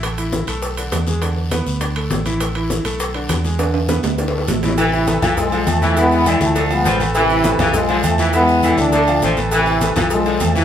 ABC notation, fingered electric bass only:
X:1
M:4/4
L:1/8
Q:1/4=203
K:Am
V:1 name="Fingered electric bass" clef=bass
A,,,3 B,,,3 E,,2- | E,,3 D,,3 A,,,2- | A,,,3 B,,,3 E,,2- | E,,3 D,,3 A,,,2- |
A,,,3 B,,,3 E,,2- | E,,3 D,,3 A,,,2- | A,,,3 B,,,3 E,,2- | E,,3 D,,3 A,,,2- |
A,,,3 B,,,3 E,,2 |]